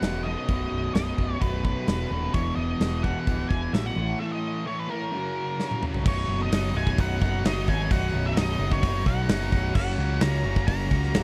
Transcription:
Already playing: F#5
0.02 E1 B1 F#2 B2, snare, open hi-hat
0.24 B1 F#2 B2 D#5
0.49 B0 B1 F#2 B2, kick, open hi-hat
0.72 B0
0.95 B0 B1 F#2 B2 D#5, snare, open hi-hat
1.18 B0 B1 F#2 B2, kick
1.41 B0 B1 F#2 B2 B4, kick, open hi-hat
1.65 B4, kick
1.88 E1 B1 F#2 B2 B4, snare, open hi-hat
2.11 D#1 B1 F#2 B2
2.34 E1 E2 B2 E3 C#5, kick, open hi-hat
2.56 E1 D#5
2.80 E1 E2 B2 E3, snare, open hi-hat
3.03 E2 B2 E3 F#5, kick
3.27 C#1 E2 B2 E3, kick, open hi-hat
3.49 E1 G#5, kick
3.73 A1 E2 B2 E3 E5, snare, open hi-hat
3.86 F#5
3.96 A1 A2 E3 A3
4.19 A2 E3 A3 E5
4.32 D#5
4.66 A2 E3 A3 C#5
4.80 B4
4.90 A2 E3 A3 A#4
5.13 F#2 C#3 F#3
5.59 F#2 C#3 F#3, snare
5.71 high tom
5.82 F#2 C#3 F#3, mid tom
5.94 floor tom
6.05 B0 B1 F#2 B2 F#3 D#4 C#5, kick, crash
6.28 F#1 B2 F#3 D#4
6.42 D#5
6.51 F#1 B1 F#2 B2 F#3 D#4, snare, open hi-hat
6.74 B0 B1 F#2 B2 F#3 D#4 G#5
6.87 kick
6.97 B0 F#2 B2 F#3 D#4 F#5, kick, open hi-hat
7.20 F#1 B1 F#2 B2 F#3 D#4 F#5, kick
7.43 F#1 F#2 B2 F#3 D#4 D#5, snare, open hi-hat
7.66 G#1 B2 F#3 D#4 G#5, kick
7.89 B0 B1 F#2 B2 F#3 D#4 F#5, kick, open hi-hat
8.12 B0 B2 F#3 D#4
8.26 E5
8.35 B0 B1 F#2 B2 F#3 D#4 D#5, snare, open hi-hat
8.59 F#1 B1 F#2 B2 F#3 D#4
8.71 C#5, kick
8.83 F#1 F#2 B2 F#3 D#4, kick, open hi-hat
9.06 B1 F#2 B2 F#3 D#4 F#5, kick
9.28 F#1 F#2 B2 F#3 D#4, snare, open hi-hat
9.52 B0 B2 F#3 D#4, kick
9.75 F#1 F#2 C#3 F#3 A#3 C#4 F#4 F#5, kick, crash
9.98 C#2 F#3 A#3 C#4 F#4
10.20 C#2 F#2 C#3 F#3 A#3 C#4 F#4 A#5, snare, open hi-hat
10.44 F#1 F#2 C#3 F#3 A#3 C#4 F#4
10.56 kick
10.68 F#1 F#3 A#3 C#4 F#4 A#5, kick, open hi-hat
10.91 C#2 F#2 C#3 F#3 A#3 C#4 F#4, kick
11.03 snare
11.13 C#1 F#3 A#3 C#4 F#4, snare, open hi-hat

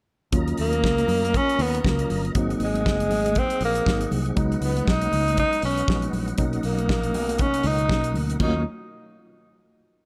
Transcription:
0.32 D#2 F#3 A#3 C#4 F4 A#4 D#5 A#5, kick, closed hi-hat, muted conga
0.48 closed hi-hat
0.57 D#2 A#3, open hi-hat
0.72 closed hi-hat, high conga
0.84 C#2, kick, snare, muted conga
0.98 closed hi-hat, high conga
1.08 F#2, open hi-hat, muted conga, low conga
1.23 closed hi-hat, high conga
1.33 C#4, kick, closed hi-hat, muted conga
1.49 closed hi-hat
1.59 D#2 B3, open hi-hat
1.75 closed hi-hat
1.81 C#2 F#3 A#3 B3, kick
1.85 A#3 C#4 F4, snare
1.99 closed hi-hat
2.10 G1, open hi-hat, low conga
2.25 closed hi-hat
2.35 G#1 F#3 A#3 C4 D#4 G#4 F#5, kick, closed hi-hat, muted conga
2.50 closed hi-hat
2.60 G#1, open hi-hat, muted conga
2.64 G#3
2.74 closed hi-hat, high conga
2.86 F#1, kick, snare, muted conga
3.00 closed hi-hat, high conga
3.10 G#1, open hi-hat, low conga
3.25 closed hi-hat, high conga
3.35 C4, kick, closed hi-hat, muted conga
3.50 closed hi-hat
3.61 A#1, open hi-hat, muted conga
3.65 A#3
3.75 closed hi-hat
3.86 G#1 F#3 A#3 C4 D#4, kick, snare
4.01 closed hi-hat
4.11 C2, open hi-hat, muted conga, low conga
4.26 closed hi-hat
4.36 C#2 F#3 G#3 B3 C#4 D#4 B4 D#5 F#5, kick, closed hi-hat
4.52 closed hi-hat
4.61 C#2 B3, open hi-hat
4.76 closed hi-hat, high conga
4.87 B1 D#4, kick, snare, muted conga
5.02 closed hi-hat, high conga
5.12 C#2, open hi-hat, muted conga, low conga
5.26 closed hi-hat, high conga
5.37 D#4, kick, closed hi-hat, muted conga
5.53 closed hi-hat
5.62 B1 C#4, open hi-hat
5.78 closed hi-hat
5.88 A#1 F#3 G#3 B3 D#4, kick, snare, muted conga
6.02 closed hi-hat
6.13 A#1, open hi-hat, muted conga, low conga
6.28 closed hi-hat
6.38 B1 B2 F#3 A#3 C#4 D#4 A#4 F#5, kick, closed hi-hat, muted conga
6.53 closed hi-hat
6.63 B1 A#3, open hi-hat, muted conga
6.78 closed hi-hat, high conga
6.89 A#1, kick, snare, muted conga
7.03 closed hi-hat, high conga
7.13 B1, open hi-hat, low conga
7.28 closed hi-hat, high conga
7.38 C#4, kick, closed hi-hat
7.54 closed hi-hat
7.63 C#2 D#4, open hi-hat, muted conga
7.79 closed hi-hat
7.88 B1 F#3 A#3 C#4 D#4, kick, snare
8.04 closed hi-hat
8.14 D2, open hi-hat, low conga
8.30 closed hi-hat
8.39 D#2 D#3 F#3 A#3 C#4 D#4 F4 F#4 C#5 F5, kick, crash, high conga

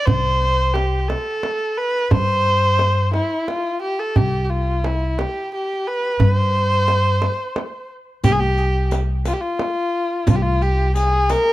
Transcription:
0.06 C2 C5, tombak dum
0.42 tombak ka
0.74 G4, tombak tek
1.08 A4, tombak tek
1.43 tombak tek
1.77 B4
2.10 G2 C5, tombak dum
2.47 tombak ka
2.79 tombak tek
3.13 E4, tombak tek
3.47 F4, tombak tek
3.82 G4
3.99 A4
4.16 C2 G4, tombak dum
4.44 G4
4.50 F4, tombak ka
4.84 E4, tombak tek
5.18 G4, tombak tek
5.53 G4
5.87 B4
6.20 G2 B4, tombak dum
6.32 C5
6.88 tombak tek
7.22 tombak tek
7.56 tombak tek
8.24 C2 G4, riq, tombak dum
8.31 G#4
8.39 G4
8.58 riq
8.91 riq, tombak tek
9.25 F4, riq, tombak tek
9.33 G4
9.41 F4
9.59 tombak tek
10.27 C2 F4, riq, tombak dum
10.35 G4
10.42 F4
10.62 G4, riq
10.95 G#4, riq
11.29 A#4, riq, tombak tek

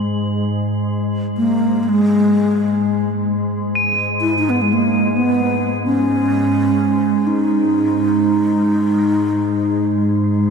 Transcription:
Already playing: G#2 G#3 F#7
1.37 A#3
1.83 A#3
1.89 G#3
3.31 G#2 G#3
3.75 D#7
4.21 E4
4.38 D#4
4.49 B3
4.62 G#3
4.73 A#3
5.17 B3
5.86 C#4
7.27 D#4

